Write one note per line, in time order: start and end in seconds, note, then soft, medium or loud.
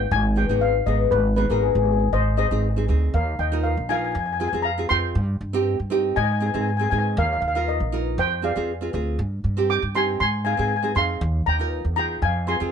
0.11 0.47 G#1 loud
0.11 0.35 G#5 loud
0.36 0.44 B3 medium
0.36 0.44 D#4 medium
0.36 0.45 G#4 medium
0.36 0.61 G5 medium
0.49 0.84 G#1 medium
0.49 0.72 B3 medium
0.49 0.72 D#4 medium
0.49 0.73 G#4 medium
0.61 0.85 F5 medium
0.86 1.10 G#1 medium
0.86 1.17 B3 medium
0.86 1.18 D#4 medium
0.86 1.18 G#4 medium
0.86 1.10 D#5 medium
1.11 1.48 G#1 loud
1.11 1.23 B4 medium
1.36 1.45 B3 medium
1.36 1.45 D#4 medium
1.36 1.46 G#4 medium
1.36 1.51 B4 medium
1.50 1.74 G#1 medium
1.50 2.03 B3 medium
1.50 2.03 D#4 medium
1.50 2.04 G#4 medium
1.50 1.63 A#4 medium
1.62 1.69 G#4 medium
1.70 1.76 G#4 soft
1.75 2.10 G#1 loud
1.75 1.84 G#4 medium
1.85 1.90 G#4 medium
1.92 1.98 G#4 medium
1.99 2.07 G#4 medium
2.13 2.49 G#1 loud
2.13 2.37 C5 medium
2.13 2.37 D#5 loud
2.37 2.46 C4 medium
2.37 2.46 D#4 medium
2.37 2.46 G#4 medium
2.37 2.86 C5 medium
2.37 2.85 D#5 loud
2.51 2.86 G#1 medium
2.51 2.66 C4 medium
2.51 2.66 D#4 medium
2.51 2.67 G#4 medium
2.76 2.84 C4 medium
2.76 2.84 D#4 medium
2.76 2.84 G#4 medium
2.88 3.12 D2 medium
2.88 3.14 C4 medium
2.88 3.14 D#4 medium
2.88 3.14 G#4 medium
3.14 3.37 D#2 loud
3.14 3.38 A#4 medium
3.14 3.40 F5 medium
3.39 3.75 D#2 medium
3.39 3.63 D#5 medium
3.39 3.63 G5 medium
3.52 3.75 D#4 medium
3.52 3.75 F4 medium
3.52 3.75 A#4 medium
3.63 3.88 A#4 medium
3.63 3.90 F5 medium
3.77 4.12 A#1 medium
3.89 4.14 D#4 medium
3.89 4.15 F4 medium
3.89 4.15 A#4 medium
3.89 3.98 F5 medium
3.89 3.95 G#5 medium
3.97 4.03 G#5 medium
4.04 4.10 G#5 medium
4.12 4.51 F2 loud
4.12 4.18 G#5 medium
4.19 4.25 G#5 medium
4.26 4.31 G#5 medium
4.33 4.39 G#5 medium
4.40 4.48 C4 medium
4.40 4.48 F4 medium
4.40 4.48 G#4 medium
4.40 4.46 G#5 medium
4.48 4.55 G#5 medium
4.53 4.88 F2 medium
4.53 4.68 C4 medium
4.53 4.68 F4 medium
4.53 4.69 G#4 medium
4.62 4.89 F5 medium
4.62 4.90 A#5 medium
4.78 4.85 C4 medium
4.78 4.86 F4 medium
4.78 4.86 G#4 medium
4.89 5.14 F2 medium
4.89 5.15 C4 medium
4.89 5.16 F4 medium
4.89 5.16 G#4 medium
4.89 5.62 G5 medium
4.89 5.61 C6 loud
5.15 5.39 G2 loud
5.41 5.77 G2 medium
5.53 5.76 C4 medium
5.53 5.76 D#4 medium
5.53 5.77 G4 loud
5.80 6.14 G2 medium
5.90 6.16 C4 medium
5.90 6.16 D#4 medium
5.90 6.17 G4 loud
6.16 6.52 G#2 loud
6.16 6.24 D#5 medium
6.16 6.22 G#5 loud
6.24 6.30 G#5 medium
6.32 6.38 G#5 medium
6.39 6.49 C4 medium
6.39 6.49 D#4 medium
6.39 6.50 G#4 medium
6.39 6.45 G#5 medium
6.46 6.52 G#5 medium
6.54 6.90 G#2 medium
6.54 6.69 C4 medium
6.54 6.69 D#4 medium
6.54 6.70 G#4 medium
6.54 6.60 G#5 medium
6.61 6.67 G#5 medium
6.69 6.76 G#5 medium
6.77 6.87 C4 medium
6.77 6.87 D#4 medium
6.77 6.88 G#4 medium
6.77 6.83 G#5 medium
6.84 6.89 G#5 medium
6.90 7.16 G#2 medium
6.90 7.17 C4 medium
6.90 7.17 D#4 medium
6.90 7.18 G#4 medium
6.90 6.97 G#5 medium
6.98 7.06 G#5 medium
7.17 7.41 D#2 loud
7.17 7.25 A#4 medium
7.17 7.24 F5 loud
7.25 7.32 F5 medium
7.33 7.40 F5 medium
7.41 7.78 D#2 loud
7.41 7.47 F5 medium
7.48 7.54 F5 medium
7.55 7.78 D#4 medium
7.55 7.78 F4 medium
7.55 7.79 A#4 medium
7.55 7.63 F5 medium
7.68 8.15 A#4 medium
7.68 8.20 D#5 medium
7.80 8.15 A#1 medium
7.92 8.18 D#4 medium
7.92 8.18 F4 medium
7.92 8.19 A#4 medium
8.18 8.54 F2 loud
8.18 8.42 C5 medium
8.18 8.45 G5 loud
8.42 8.51 C4 medium
8.42 8.51 F4 medium
8.42 8.52 G#4 medium
8.42 9.41 D5 medium
8.42 9.41 F5 medium
8.56 8.91 F2 medium
8.56 8.71 C4 medium
8.56 8.71 F4 medium
8.56 8.72 G#4 medium
8.81 8.89 C4 medium
8.81 8.89 F4 medium
8.81 8.89 G#4 medium
8.93 9.18 D2 loud
8.93 9.19 C4 medium
8.93 9.19 F4 medium
8.93 9.20 G#4 medium
9.19 9.43 G2 loud
9.44 9.80 G2 medium
9.57 9.80 C4 medium
9.57 9.80 D#4 medium
9.57 9.81 G4 medium
9.70 9.94 G5 medium
9.70 9.96 D6 loud
9.82 10.18 G2 medium
9.95 10.20 C4 medium
9.95 10.21 D#4 medium
9.95 10.21 G4 medium
9.95 10.20 G#5 medium
9.95 10.19 C6 loud
10.20 10.56 G#2 loud
10.20 10.43 G#5 medium
10.20 10.46 C6 loud
10.45 10.53 C4 medium
10.45 10.54 D#4 medium
10.45 10.54 G#4 medium
10.45 10.53 F5 medium
10.45 10.51 G#5 medium
10.53 10.59 G#5 medium
10.57 10.94 G#2 medium
10.57 10.73 C4 medium
10.57 10.73 D#4 medium
10.57 10.74 G#4 medium
10.57 10.67 G#5 medium
10.68 10.75 G#5 medium
10.76 10.82 G#5 medium
10.83 10.91 C4 medium
10.83 10.91 D#4 medium
10.83 10.91 G#4 medium
10.83 10.91 G#5 medium
10.95 11.20 F2 medium
10.95 11.21 C4 medium
10.95 11.21 D#4 medium
10.95 11.22 G#4 medium
10.95 11.44 F5 medium
10.95 11.48 C6 medium
11.21 11.45 D#2 loud
11.46 11.83 D#2 medium
11.46 11.95 G5 medium
11.46 11.94 A#5 loud
11.59 11.82 D#4 medium
11.59 11.83 F4 medium
11.59 11.83 A#4 medium
11.85 12.20 E2 medium
11.96 12.22 D#4 medium
11.96 12.22 F4 medium
11.96 12.23 G#4 medium
11.96 12.22 G5 medium
11.96 12.23 A#5 medium
12.22 12.58 F2 loud
12.22 12.48 F5 medium
12.22 12.49 G#5 medium
12.47 12.55 C4 medium
12.47 12.56 F4 medium
12.47 12.56 G#4 medium
12.47 12.72 G#5 medium
12.47 12.72 C6 medium
12.60 12.72 F2 medium
12.60 12.72 C4 medium
12.60 12.72 F4 medium
12.60 12.72 G#4 medium